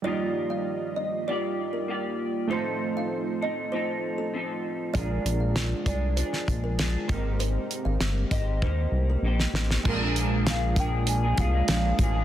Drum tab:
CC |----------------|----------------|----------------|----------------|
HH |----------------|----------------|x-x-x-x-x-x-x-x-|x-x-x-x---------|
SD |----------------|----------------|----o----o--o---|----o--------ooo|
BD |----------------|----------------|o-----o---o---o-|------o-o-------|

CC |x---------------|
HH |--x-x-x-x-x-x-x-|
SD |----o-------o---|
BD |o-----o---o---o-|